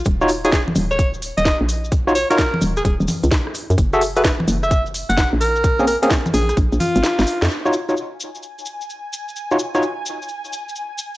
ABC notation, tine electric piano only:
X:1
M:4/4
L:1/16
Q:"Swing 16ths" 1/4=129
K:Ebm
V:1 name="Tine electric piano"
z [EFGd] z [EFGd] z12 | z [EFGd] z [EFGd] z12 | z [GA=A_f] z [G_A=Af] z12 | z [B,=CDA] z [B,CDA] z12 |
z [EFGd] z [EFGd] z12 | z [EFGd] z [EFGd] z12 |]